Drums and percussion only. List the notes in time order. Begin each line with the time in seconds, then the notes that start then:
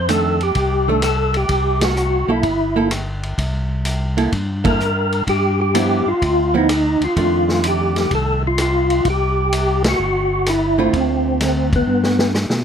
0.09 hi-hat pedal, ride
0.41 ride
0.55 kick, ride
1.02 cross-stick, hi-hat pedal, ride
1.34 ride
1.49 kick, ride
1.81 snare, ride
1.96 hi-hat pedal
2.43 kick, ride
2.91 cross-stick, hi-hat pedal, ride
3.23 ride
3.38 kick, ride
3.85 hi-hat pedal, ride
4.18 ride
4.32 kick, ride
4.65 kick, ride
4.80 hi-hat pedal
5.12 ride
5.27 kick, ride
5.75 hi-hat pedal, ride
6.22 kick, ride
6.69 cross-stick, hi-hat pedal, ride
7.02 ride
7.17 kick, ride
7.49 snare
7.64 hi-hat pedal, ride
7.96 snare, ride
8.11 kick, ride
8.58 cross-stick, hi-hat pedal, ride
8.90 ride
9.05 kick, ride
9.53 hi-hat pedal, ride
9.84 snare, ride
10.46 cross-stick, hi-hat pedal, ride
10.93 kick, ride
11.40 snare, hi-hat pedal, ride
11.73 kick, ride
12.03 snare
12.19 snare
12.34 snare, hi-hat pedal
12.50 snare